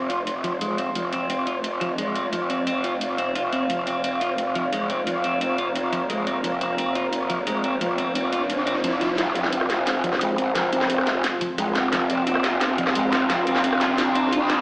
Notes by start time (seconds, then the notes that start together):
Already playing: F1 C4 F4 C5 F5 C6
0.10 F4, closed hi-hat
0.27 closed hi-hat
0.44 F3, closed hi-hat
0.61 G#3, closed hi-hat
0.78 C4, closed hi-hat
0.95 F3, closed hi-hat
1.13 C4, closed hi-hat
1.30 C4, closed hi-hat
1.47 F4, closed hi-hat
1.64 closed hi-hat
1.81 F3, closed hi-hat
1.98 G#3, closed hi-hat
2.16 C4, closed hi-hat
2.33 F3, closed hi-hat
2.50 C4, closed hi-hat
2.67 C4, closed hi-hat
2.84 F4, closed hi-hat
3.01 closed hi-hat
3.18 C4, closed hi-hat
3.35 F4, closed hi-hat
3.53 C4, closed hi-hat
3.70 F1 F3 A#4, closed hi-hat
3.87 C4, closed hi-hat
4.04 C4, closed hi-hat
4.21 F4, closed hi-hat
4.38 closed hi-hat
4.55 F3, closed hi-hat
4.73 G#3, closed hi-hat
4.90 C4 A#5, closed hi-hat
5.07 F3, closed hi-hat
5.24 C4, closed hi-hat
5.41 C4, closed hi-hat
5.58 F4, closed hi-hat
5.76 closed hi-hat
5.93 F3, closed hi-hat
6.10 G#3, closed hi-hat
6.27 C4, closed hi-hat
6.44 F3, closed hi-hat, riser
6.61 C4, closed hi-hat
6.78 C4, closed hi-hat
6.95 F4, closed hi-hat
7.13 closed hi-hat
7.30 F3, closed hi-hat
7.47 G#3, closed hi-hat
7.64 C4, closed hi-hat
7.81 F3, closed hi-hat
7.98 C4, closed hi-hat
8.15 C4, closed hi-hat
8.33 F4, closed hi-hat
8.50 closed hi-hat
8.67 C4, closed hi-hat
8.84 F3, closed hi-hat
9.01 F3, closed hi-hat
9.18 F1 F3 C4 F4 C5, snare, closed hi-hat, riser
9.35 C4, closed hi-hat
9.44 snare
9.53 C4, closed hi-hat
9.61 cross-stick
9.70 F1 F4, snare, closed hi-hat
9.87 snare, closed hi-hat
10.04 D#1 F3, closed hi-hat
10.13 cross-stick, snare
10.19 G#1 G#3 C6, closed hi-hat
10.38 G#1 C4, closed hi-hat
10.55 F3, snare, closed hi-hat
10.73 C4, closed hi-hat
10.81 snare
10.90 F1 C4, closed hi-hat
10.98 cross-stick
11.07 F4, snare, closed hi-hat
11.24 snare, closed hi-hat
11.41 F3, closed hi-hat
11.58 G#1 G#3, closed hi-hat
11.75 D#1 C4, cross-stick, snare, closed hi-hat
11.92 F1 F3 F5, snare, closed hi-hat
12.10 C4, closed hi-hat
12.27 C4, closed hi-hat
12.35 cross-stick
12.44 F1 F4, snare, closed hi-hat
12.61 snare, closed hi-hat
12.78 D#1 F3, closed hi-hat
12.87 cross-stick, snare
12.95 G#1 G#3, closed hi-hat
13.13 G#1 C4, snare, closed hi-hat
13.30 F3, snare, closed hi-hat
13.47 C4, closed hi-hat
13.55 snare
13.64 F1 C4, closed hi-hat
13.73 cross-stick
13.81 F4, snare, closed hi-hat
13.98 C2, snare, closed hi-hat
14.15 C4, closed hi-hat
14.33 F4, closed hi-hat
14.50 C4, cross-stick, snare, closed hi-hat